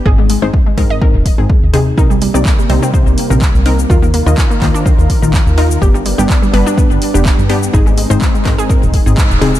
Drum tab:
HH |--o---o---o---o-|--o---o---o---o-|--o---o---o---o-|--o---o---o---o-|
SH |----------------|xx-xxx-xxx-xxx-x|xx-xxx-xxx-xxx-x|xx-xxx-xxx-xxx-x|
CP |----------------|----x-------x---|----x-x-----x---|----x-------x---|
BD |o---o-o-o-o-o---|o---o---o---o---|o---o-o-o-o-o---|o---o---o---o---|

HH |--o---o---o---o-|
SH |xx-xxx-xxx-xxx-x|
CP |----x-x-----x---|
BD |o---o-o-o-o-o---|